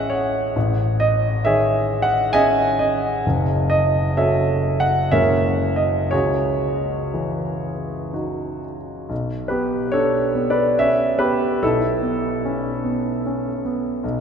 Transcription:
Already playing: A1 E3 C#4 G#4 C#5 D#5 E5 F#5
0.10 C#5
0.56 A1
1.00 D#5
1.45 D#3 G#4 C#5 E5
2.02 F#5
2.33 C#4 G#4 D#5 E5 G#5
2.79 D#5
3.26 F#1
3.70 D#5
4.17 C#4 F#4 A4 C#5 E5
4.80 F#5
5.11 F#1 G#3 A#3 C#4 F#4 A#4 C#5 E5
5.76 D#5
6.11 C#2 F#4 G#4 C#5
7.14 E3
8.13 D#4 F#4
9.09 B1
9.48 B3 G4 B4
9.92 D4 A4 C#5
10.35 B3
10.50 B4 D5
10.79 C#4 C#5 E5
11.19 B3 G4 B4
11.62 B1 E4 A4
12.02 B3
12.45 C#4
12.84 B3
13.26 C#4
13.65 B3
14.04 B1

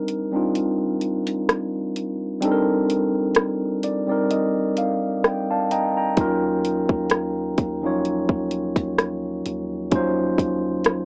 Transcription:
Already playing: G3 C4 D4 D#4 A#4
0.08 closed hi-hat
0.32 G3 C4 D4 D#4
0.36 F4
0.55 closed hi-hat
1.01 closed hi-hat
1.27 closed hi-hat
1.49 cross-stick, closed hi-hat
1.96 closed hi-hat
2.40 G3 C4 D4 D#4, closed hi-hat
2.45 A4
2.52 A#4
2.90 closed hi-hat
3.35 cross-stick, closed hi-hat
3.83 D5, closed hi-hat
4.07 G3 C4 D#4 D5
4.12 A#4
4.31 D#5, closed hi-hat
4.77 F5, closed hi-hat
5.24 G5, cross-stick, closed hi-hat
5.50 D5 F5 A5
5.71 D#5 G5 A#5, closed hi-hat
5.97 G5 A#5
6.17 D#2 F#3 C#4 D#4 F4, kick, closed hi-hat
6.21 A#4
6.65 closed hi-hat
6.89 D#2, kick
7.10 cross-stick, closed hi-hat
7.58 D#2, kick, closed hi-hat
7.82 F3 C#4 D#4 F4
7.87 F#3 C#5
8.05 closed hi-hat
8.29 D#2, kick
8.51 closed hi-hat
8.76 D#2, kick, closed hi-hat
8.98 cross-stick, closed hi-hat
9.46 D#2, closed hi-hat
9.91 D#2 F#3 C#4 D#4 F4, kick, closed hi-hat
9.95 C5
10.38 D#2, kick, closed hi-hat
10.85 cross-stick, closed hi-hat

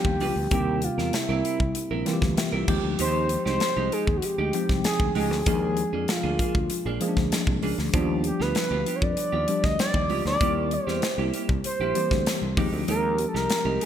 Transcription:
Already playing: F3 G3 B3 D4 G4
0.05 D#2, muted clean electric guitar stroke, kick
0.20 C#2 D4 F4 B4, open hi-hat
0.36 D2, muted clean electric guitar stroke
0.51 D#2 D3 G3 A#3 C4 E4 G4 A#4, kick, closed hi-hat
0.58 C3
0.82 F4, muted clean electric guitar stroke, closed hi-hat
0.98 E2 C4 E4 A#4, snare
1.13 E4, muted clean electric guitar stroke, snare, closed hi-hat
1.29 C2 C4 E4 A#4
1.45 C4 E4 A#4, closed hi-hat
1.60 C2, muted clean electric guitar stroke, kick
1.75 muted clean electric guitar stroke, closed hi-hat
1.91 A#1 C4 E4 A#4
2.06 E3 G3 A#3 C4 F4, muted clean electric guitar stroke, snare, closed hi-hat
2.13 G4
2.22 D2, muted clean electric guitar stroke, kick, snare
2.37 E5, muted clean electric guitar stroke, snare, closed hi-hat
2.52 C2 C4 E4 A#4
2.68 D#2 F3 G#3 C4 D#4 G4 G5, muted clean electric guitar stroke, kick, crash
2.84 D2, muted clean electric guitar stroke
2.99 D#2 G#3 D#4 G4 C5, closed hi-hat
3.29 muted clean electric guitar stroke, closed hi-hat
3.46 C2 G#3 D#4 G4 C5, snare
3.60 muted clean electric guitar stroke, snare, closed hi-hat
3.77 C2 G#3 D#4 G4
3.92 G#3 D#4 G4 G#4, closed hi-hat
4.07 D#2, muted clean electric guitar stroke, kick
4.17 F#4
4.22 G4, muted clean electric guitar stroke, closed hi-hat
4.38 D2 G#3 D#4 G4
4.53 F3 G#3 C4 D#4 G5, muted clean electric guitar stroke, closed hi-hat
4.69 C2, muted clean electric guitar stroke, kick, snare
4.84 G#4, snare, closed hi-hat
5.00 D2, muted clean electric guitar stroke, kick
5.15 C#2 G#3 D#4 G4 G#4, open hi-hat
5.31 D2, muted clean electric guitar stroke, snare
5.46 D#2 F3 G#3 A#3 D4 G#4, kick, closed hi-hat
5.77 muted clean electric guitar stroke, closed hi-hat
5.93 F2 A#3 D4 G#4
6.08 F4, muted clean electric guitar stroke, snare, closed hi-hat
6.23 D2 A#3 D4 G#4
6.39 A#3 D4 G#4, kick, closed hi-hat
6.55 D2, muted clean electric guitar stroke, kick
6.70 muted clean electric guitar stroke, closed hi-hat
6.85 A#1 A#3 D4 G#4
7.01 F3 G#3 A#3 C#4 G#4, muted clean electric guitar stroke, closed hi-hat
7.08 D4
7.17 D2, muted clean electric guitar stroke, kick, snare
7.32 snare, closed hi-hat
7.47 C2, muted clean electric guitar stroke, kick
7.62 C#2 A#3 D4 G#4, open hi-hat
7.78 D2, muted clean electric guitar stroke, snare
7.93 D#2 F3 G3 B3 D4 F4 G4, kick, closed hi-hat
8.01 G4
8.24 G4, muted clean electric guitar stroke, closed hi-hat
8.40 D2 B3 F4 G4 B4, snare
8.55 B4, muted clean electric guitar stroke, snare, closed hi-hat
8.71 D2 B3 F4 G4
8.86 B3 F4 G4, closed hi-hat
8.96 C#5
9.02 F2 D5, muted clean electric guitar stroke, kick
9.17 muted clean electric guitar stroke, closed hi-hat
9.32 D#2 B3 F4 G4
9.48 F3 G3 B3 D4 G4, muted clean electric guitar stroke, closed hi-hat
9.63 D2 D#5, muted clean electric guitar stroke, kick, snare
9.79 D5, snare, closed hi-hat
9.94 D#2, muted clean electric guitar stroke, kick
10.10 C#2 B3 F4 G4, open hi-hat
10.25 D2 D5, muted clean electric guitar stroke, snare
10.41 D#2 G3 A#3 C4 E4 G4, kick, closed hi-hat
10.71 C5, muted clean electric guitar stroke, closed hi-hat
10.87 E2 A#3 E4 G4, snare
11.02 muted clean electric guitar stroke, snare, closed hi-hat
11.18 C2 A#3 E4 G4
11.34 A#3 E4 G4, closed hi-hat
11.49 C2, muted clean electric guitar stroke, kick
11.64 C5, muted clean electric guitar stroke, closed hi-hat
11.80 A#1 A#3 E4 G4
11.95 E3 G3 A#3 C4 G4, muted clean electric guitar stroke, closed hi-hat
12.11 D2, muted clean electric guitar stroke, kick, snare
12.26 muted clean electric guitar stroke, snare, closed hi-hat
12.42 C2, muted clean electric guitar stroke
12.57 D#2 F3 G#3 C4 D#4 G4, kick, open hi-hat
12.73 D2 G#3 D#4 G4
12.88 D#2 G#3 D#4 G4 A#4, closed hi-hat
13.18 muted clean electric guitar stroke, closed hi-hat
13.29 A4
13.34 C2 G#3 D#4 G4 A#4, snare
13.50 muted clean electric guitar stroke, snare, closed hi-hat
13.65 C2 G#3 D#4 G4
13.80 G#3 D#4 G4, closed hi-hat

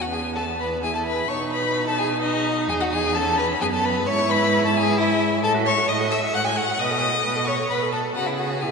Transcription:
Already playing: E2 B3
0.00 F#4 F#5
0.12 G#4 G#5
0.35 A4 A5
0.59 B4 B5
0.83 E4 G#4 G#5
0.95 A4 A5
1.04 B4 B5
1.28 B2 D#4 C#5 C#6
1.52 B4 B5
1.87 A4 A5
1.99 G#4 G#5
2.21 D#4 D#5
2.69 E2 G#4 G#5
2.80 F#4 F#5
2.91 G#4 G#5
3.15 C#4 A4 A5
3.37 B4 B5
3.61 F#2 B3 G#4 G#5
3.74 A4 A5
3.85 B4 B5
4.06 G#2 E4 C#5 C#6
4.30 B4 B5
4.65 A4 A5
4.76 G#4 G#5
4.98 E4 E5
5.43 A2 A4 A5
5.54 F#4
5.65 A4 C#5 C#6
5.77 F#4
5.88 A2 A4 D#5 D#6
6.00 F#4
6.11 A4 E5 E6
6.22 F#4
6.34 A2 A4 F#5 F#6
6.45 F#4 G#5 G#6
6.56 A4 F#5 F#6
6.68 F#4
6.79 B2 B4 D#5 D#6
6.90 A4
7.02 B4
7.14 A4
7.25 B2 B4
7.36 A4
7.47 B4 C#5 C#6
7.59 A4
7.69 B2 B4 B5
7.82 A4
7.92 A4 B4 A5
8.05 A4
8.15 C#3 F#4 G#4 F#5
8.26 E4 E5
8.38 F#4 F#5
8.61 B2 E4 G#4 G#5

